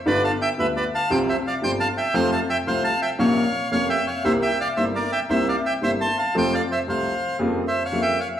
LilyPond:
<<
  \new Staff \with { instrumentName = "Bandoneon" } { \time 4/4 \key f \major \tempo 4 = 114 \tuplet 3/2 { <b' d''>8 <f'' a''>8 <e'' g''>8 <b' e''>8 <b' d''>8 <f'' a''>8 <c'' g''>8 <c'' e''>8 <d'' f''>8 <c'' g''>8 <f'' a''>8 <e'' g''>8 } | \tuplet 3/2 { <c'' f''>8 <f'' a''>8 <e'' g''>8 <c'' f''>8 <f'' a''>8 <e'' g''>8 } <des'' f''>4 \tuplet 3/2 { <des'' f''>8 <e'' g''>8 <des'' f''>8 } | \tuplet 3/2 { <c'' e''>8 <e'' g''>8 <d'' f''>8 <c'' e''>8 <bes' d''>8 <e'' g''>8 <c'' e''>8 <d'' f''>8 <e'' g''>8 <c'' e''>8 <a'' c'''>8 <f'' a''>8 } | \tuplet 3/2 { <c'' g''>8 <d'' f''>8 <c'' e''>8 } <c'' f''>4 \tuplet 3/2 { r8. <c'' e''>8 <des'' f''>16~ <des'' f''>16 <e'' g''>8 <des'' f''>8 r16 } | }
  \new Staff \with { instrumentName = "Upright piano" } { \clef bass \time 4/4 \key f \major <g,, g, d g b f'>8 r8 <d, d g b f'>8 r8 <c, c f g f'>8 r8 <g,, g, c f g f'>8 r8 | <f, c f a f'>8 r8 <c, c f a f'>8 r8 <bes,, bes, c f bes des'>8 r8 <f,, f, c f bes des'>8 r8 | <c, c g bes e'>8 r8 <g,, g, c g bes e'>8 r8 <c, c g bes e'>8 r8 <g,, g, c g bes e'>8 r8 | <f, c f a f'>8 r8 <c, c f a f'>8 r8 <f, des f g bes f'>8 r8 <f, des f g bes f'>8 r8 | }
>>